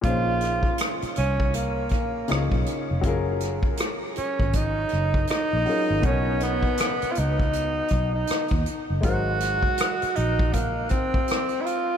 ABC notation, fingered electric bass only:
X:1
M:4/4
L:1/16
Q:"Swing 16ths" 1/4=80
K:Bbm
V:1 name="Fingered electric bass" clef=bass
B,,,4 z2 C,,4 B,,,2 D,, _C,, z F,,, | G,,,4 z3 A,,,3 G,,,2 z B,,, z A,,, | =B,,,4 z2 ^C,,4 B,,,2 z ^D,, z ^F,,, | A,,,4 z2 B,,,4 A,,,2 z4 |]